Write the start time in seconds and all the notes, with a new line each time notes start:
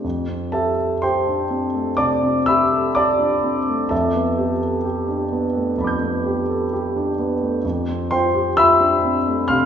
0.04 F2
0.28 C4
0.52 G4 A4 E5 A5
0.78 A4
1.02 G4 C5 G5 C6
1.27 D4
1.51 C4
1.75 A3
1.97 C3 D5 A5 D6
2.23 C4
2.46 G4 E5 B5 E6
2.72 A4
2.95 G4 D5 A5 D6
3.19 D4
3.44 C4
3.68 A3
3.89 F2 A4 E5 A5
4.15 B3
4.38 G4
4.61 A4
4.85 G4
5.08 D4
5.32 B3
5.56 A3
5.78 F2 A5 B5
5.84 D6 G6
6.03 B3
6.26 G4
6.50 A4
6.73 G4
6.96 D4
7.19 B3
7.42 A3
7.64 F2
7.89 C4
8.11 F4 C5 G5 C6
8.34 G4
8.57 F4 E5 B5 E6
8.80 D4
9.05 C4
9.27 A3
9.48 C3 F5 C6 F6